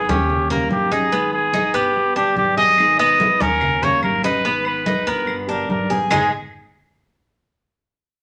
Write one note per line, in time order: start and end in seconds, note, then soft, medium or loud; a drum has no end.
0.00 0.29 G#3 medium
0.00 0.29 B3 medium
0.00 0.29 D#4 medium
0.00 0.12 G#4 medium
0.00 0.30 G#4 medium
0.09 0.67 D#2 loud
0.09 0.49 C#4 medium
0.09 0.50 G4 medium
0.09 high conga loud
0.29 muted nylon-string guitar stroke medium
0.29 high conga soft
0.29 low conga medium
0.50 0.70 G3 medium
0.50 0.91 A#3 medium
0.50 0.70 C#4 medium
0.50 0.70 G4 medium
0.50 0.70 A#4 medium
0.50 high conga soft
0.50 low conga medium
0.71 1.69 G#1 medium
0.71 0.91 D#3 medium
0.71 0.91 G3 medium
0.71 0.91 C#4 medium
0.71 0.94 G4 medium
0.71 0.90 G4 medium
0.71 high conga medium
0.91 1.12 G3 medium
0.91 1.12 C#4 medium
0.91 1.12 D#4 medium
0.91 1.11 G4 medium
0.91 1.33 G#4 loud
0.91 high conga medium
1.12 1.53 D#3 medium
1.12 1.52 G#3 medium
1.12 1.53 B3 medium
1.12 1.53 D#4 medium
1.12 1.54 G#4 medium
1.12 high conga soft
1.33 1.76 G#4 medium
1.33 high conga soft
1.53 1.94 G#3 medium
1.53 1.95 B3 medium
1.53 1.74 D#4 medium
1.53 1.95 D#4 medium
1.53 1.95 G#4 medium
1.53 high conga medium
1.74 2.33 G1 medium
1.74 2.15 B3 medium
1.74 2.16 G4 loud
1.95 muted nylon-string guitar stroke medium
1.95 high conga soft
2.15 2.35 D3 medium
2.15 2.36 G3 medium
2.15 2.36 B3 medium
2.15 2.56 D4 medium
2.15 2.36 G4 medium
2.15 2.36 G4 loud
2.15 high conga soft
2.36 3.35 G#1 medium
2.36 2.57 D3 medium
2.36 2.57 G3 medium
2.36 2.57 B3 medium
2.36 2.57 G4 loud
2.36 2.56 G4 medium
2.36 high conga medium
2.57 2.78 D3 medium
2.57 2.78 G3 medium
2.57 2.78 B3 medium
2.57 2.78 G4 medium
2.57 2.98 G#4 medium
2.57 2.96 D#5 loud
2.57 high conga medium
2.78 3.19 D#3 medium
2.78 3.18 G#3 medium
2.78 3.19 B3 medium
2.78 3.20 D#4 medium
2.78 3.20 G#4 medium
2.78 high conga soft
2.78 claves medium
2.99 3.40 B3 loud
2.99 3.43 D#5 loud
2.99 high conga soft
3.20 3.61 G#3 soft
3.20 3.61 B3 medium
3.20 3.61 D#4 medium
3.20 3.61 G#4 medium
3.20 high conga loud
3.41 3.99 D#2 loud
3.41 3.81 C#4 medium
3.41 3.85 A#4 loud
3.41 high conga loud
3.61 muted nylon-string guitar stroke medium
3.61 high conga soft
3.61 low conga medium
3.61 claves medium
3.82 4.02 G3 medium
3.82 4.23 A#3 medium
3.82 4.02 C#4 medium
3.82 4.02 G4 medium
3.82 4.03 C#5 medium
3.82 high conga soft
3.82 low conga medium
4.03 5.01 G#1 medium
4.03 4.23 D#3 medium
4.03 4.23 G3 medium
4.03 4.23 C#4 medium
4.03 4.22 G4 medium
4.03 4.23 A#4 loud
4.03 high conga medium
4.03 claves medium
4.23 4.44 G3 medium
4.23 4.44 C#4 medium
4.23 4.44 D#4 medium
4.23 4.43 G4 medium
4.23 4.63 B4 loud
4.23 high conga medium
4.44 4.85 D#3 medium
4.44 4.84 G#3 medium
4.44 4.85 B3 medium
4.44 4.85 D#4 medium
4.44 4.86 G#4 medium
4.65 5.10 B4 medium
4.65 high conga soft
4.65 claves medium
4.85 5.27 G#3 medium
4.85 5.27 B3 medium
4.85 5.06 D#4 medium
4.85 5.27 D#4 medium
4.85 5.27 G#4 medium
4.85 high conga medium
5.07 5.65 G1 loud
5.07 5.47 B3 medium
5.07 5.38 A#4 medium
5.27 muted nylon-string guitar stroke medium
5.27 high conga soft
5.27 claves medium
5.47 5.67 D3 medium
5.47 5.68 G3 medium
5.47 5.68 B3 medium
5.47 5.89 D4 medium
5.47 5.68 G4 medium
5.47 5.69 A#4 medium
5.47 high conga soft
5.68 6.06 G#1 medium
5.68 5.89 D3 medium
5.68 5.89 G3 medium
5.68 5.89 B3 medium
5.68 5.88 G4 medium
5.68 5.99 A#4 medium
5.68 high conga medium
5.89 6.10 D3 medium
5.89 6.10 G3 medium
5.89 6.10 B3 medium
5.89 6.10 G4 medium
5.89 6.10 G#4 medium
5.89 high conga medium
6.10 6.30 G#1 medium
6.10 6.27 G#2 medium
6.10 6.27 D#3 medium
6.10 6.30 G#3 medium
6.10 6.28 G#3 medium
6.10 6.28 B3 medium
6.10 6.30 D#4 medium
6.10 6.28 D#4 medium
6.10 6.31 G#4 medium
6.10 6.31 G#4 loud
6.10 6.28 G#4 medium
6.10 low conga loud
6.10 claves loud